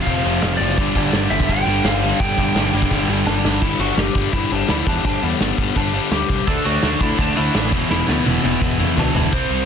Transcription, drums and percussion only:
0.07 kick loud
0.07 crash medium
0.42 snare loud
0.42 crash medium
0.78 kick loud
0.78 crash medium
0.95 kick medium
1.13 snare loud
1.13 crash medium
1.40 kick medium
1.49 kick medium
1.49 crash medium
1.85 snare loud
1.85 crash medium
2.20 kick loud
2.20 crash medium
2.38 kick medium
2.56 snare loud
2.56 crash medium
2.82 kick medium
2.91 kick loud
2.91 snare medium
3.27 snare loud
3.45 snare loud
3.62 kick loud
3.62 crash loud
3.62 crash medium
3.79 crash medium
3.97 snare loud
3.97 crash medium
4.15 kick medium
4.15 crash medium
4.32 kick loud
4.32 crash medium
4.51 crash medium
4.68 snare loud
4.68 crash medium
4.86 kick medium
4.86 crash medium
5.05 kick loud
5.05 crash medium
5.23 crash medium
5.40 snare loud
5.40 crash medium
5.58 kick medium
5.58 crash medium
5.76 kick loud
5.76 crash medium
5.93 crash medium
6.11 snare loud
6.11 crash medium
6.29 kick medium
6.29 crash medium
6.47 kick loud
6.47 crash medium
6.65 crash medium
6.82 snare loud
6.82 crash medium
7.00 kick medium
7.00 crash medium
7.18 kick loud
7.18 crash medium
7.36 crash medium
7.54 snare loud
7.54 crash medium
7.72 kick loud
7.72 crash medium
7.91 snare medium
8.08 snare medium
8.26 high tom medium
8.44 high tom medium
8.61 kick loud
8.61 mid tom medium
8.80 mid tom medium
8.97 floor tom loud
9.15 floor tom loud
9.33 kick medium
9.33 crash loud
9.51 open hi-hat medium

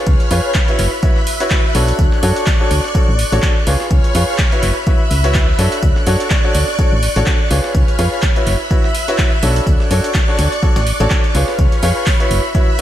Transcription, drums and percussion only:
0.07 kick loud
0.07 tambourine medium
0.20 closed hi-hat soft
0.31 open hi-hat loud
0.31 tambourine medium
0.54 kick loud
0.54 snare loud
0.54 clap loud
0.54 tambourine medium
0.68 closed hi-hat soft
0.78 clap soft
0.78 open hi-hat loud
0.78 tambourine medium
1.03 kick loud
1.03 tambourine medium
1.16 snare medium
1.27 open hi-hat loud
1.27 tambourine medium
1.40 closed hi-hat soft
1.50 kick loud
1.50 snare loud
1.50 clap loud
1.50 tambourine medium
1.75 snare soft
1.75 open hi-hat loud
1.75 tambourine medium
1.88 closed hi-hat soft
1.99 kick loud
1.99 tambourine medium
2.12 snare medium
2.23 open hi-hat loud
2.23 tambourine medium
2.36 closed hi-hat soft
2.46 kick loud
2.46 snare loud
2.46 clap loud
2.46 tambourine medium
2.71 open hi-hat loud
2.71 tambourine medium
2.84 snare soft
2.95 kick loud
2.95 tambourine medium
3.19 open hi-hat loud
3.19 tambourine medium
3.32 closed hi-hat soft
3.42 kick loud
3.42 snare loud
3.42 clap loud
3.42 tambourine medium
3.67 snare soft
3.67 open hi-hat loud
3.67 tambourine medium
3.80 snare medium
3.91 kick loud
3.91 tambourine medium
4.04 closed hi-hat soft
4.15 open hi-hat loud
4.15 tambourine medium
4.38 kick loud
4.38 snare loud
4.38 clap loud
4.38 tambourine medium
4.52 closed hi-hat soft
4.62 clap soft
4.62 open hi-hat loud
4.62 tambourine medium
4.87 kick loud
4.87 tambourine medium
5.11 open hi-hat loud
5.11 tambourine medium
5.24 closed hi-hat soft
5.34 kick loud
5.34 snare loud
5.34 clap loud
5.34 tambourine medium
5.59 snare soft
5.59 open hi-hat loud
5.59 tambourine medium
5.72 closed hi-hat soft
5.83 kick loud
5.83 tambourine medium
5.96 snare medium
6.07 open hi-hat loud
6.07 tambourine medium
6.20 closed hi-hat soft
6.30 kick loud
6.30 snare loud
6.30 clap loud
6.30 tambourine medium
6.55 open hi-hat loud
6.55 tambourine medium
6.68 snare soft
6.79 kick loud
6.79 tambourine medium
7.03 open hi-hat loud
7.03 tambourine medium
7.16 closed hi-hat soft
7.26 kick loud
7.26 snare loud
7.26 clap loud
7.26 tambourine medium
7.51 snare soft
7.51 open hi-hat loud
7.51 tambourine medium
7.64 snare medium
7.75 kick loud
7.75 tambourine medium
7.88 closed hi-hat soft
7.99 open hi-hat loud
7.99 tambourine medium
8.22 kick loud
8.22 snare loud
8.22 clap loud
8.22 tambourine medium
8.36 closed hi-hat soft
8.46 clap soft
8.46 open hi-hat loud
8.46 tambourine medium
8.71 kick loud
8.71 tambourine medium
8.84 snare soft
8.95 open hi-hat loud
8.95 tambourine medium
9.08 closed hi-hat soft
9.18 kick loud
9.18 snare loud
9.18 clap loud
9.18 tambourine medium
9.43 snare soft
9.43 open hi-hat loud
9.43 tambourine medium
9.56 closed hi-hat soft
9.67 kick loud
9.67 tambourine medium
9.80 snare medium
9.91 open hi-hat loud
9.91 tambourine medium
10.04 closed hi-hat soft
10.14 kick loud
10.14 snare loud
10.14 clap loud
10.14 tambourine loud
10.39 snare loud
10.39 open hi-hat loud
10.39 tambourine medium
10.52 closed hi-hat soft
10.63 kick loud
10.63 tambourine medium
10.76 snare loud
10.76 tambourine medium
10.87 closed hi-hat soft
10.87 open hi-hat loud
11.00 tambourine medium
11.10 kick loud
11.10 snare loud
11.10 clap loud
11.10 tambourine medium
11.24 closed hi-hat soft
11.35 open hi-hat loud
11.35 tambourine medium
11.48 snare medium
11.59 kick loud
11.59 tambourine medium
11.72 closed hi-hat soft
11.83 open hi-hat loud
11.83 tambourine medium
12.06 kick loud
12.06 snare loud
12.06 clap loud
12.06 open hi-hat medium
12.06 tambourine medium
12.20 closed hi-hat soft
12.31 open hi-hat loud
12.31 tambourine medium
12.55 kick loud
12.55 tambourine medium

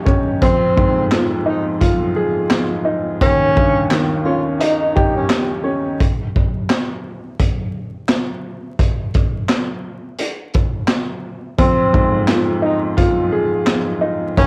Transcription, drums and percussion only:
0.07 kick loud
0.07 shaker medium
0.42 kick loud
0.42 closed hi-hat medium
0.78 kick loud
1.12 snare loud
1.12 clap loud
1.12 closed hi-hat medium
1.81 kick medium
1.81 closed hi-hat medium
2.51 snare loud
2.51 clap loud
2.51 closed hi-hat medium
3.21 kick loud
3.21 closed hi-hat medium
3.57 kick loud
3.91 snare loud
3.91 clap loud
3.91 closed hi-hat medium
4.61 closed hi-hat medium
4.97 kick loud
5.30 snare loud
5.30 clap loud
5.30 closed hi-hat medium
6.00 kick loud
6.00 closed hi-hat medium
6.36 kick medium
6.70 snare loud
6.70 clap loud
6.70 closed hi-hat medium
7.40 kick medium
7.40 closed hi-hat medium
8.09 snare loud
8.09 clap loud
8.09 closed hi-hat medium
8.79 kick loud
8.79 closed hi-hat medium
9.14 kick loud
9.14 closed hi-hat medium
9.49 snare loud
9.49 clap loud
9.49 closed hi-hat medium
10.19 closed hi-hat medium
10.54 kick loud
10.54 closed hi-hat medium
10.88 snare loud
10.88 clap loud
10.88 closed hi-hat medium
11.58 kick loud
11.58 closed hi-hat medium
11.94 kick loud
12.28 snare loud
12.28 clap loud
12.28 closed hi-hat medium
12.98 kick medium
12.98 closed hi-hat medium
13.67 snare loud
13.67 clap loud
13.67 closed hi-hat medium
14.37 kick loud
14.37 closed hi-hat medium

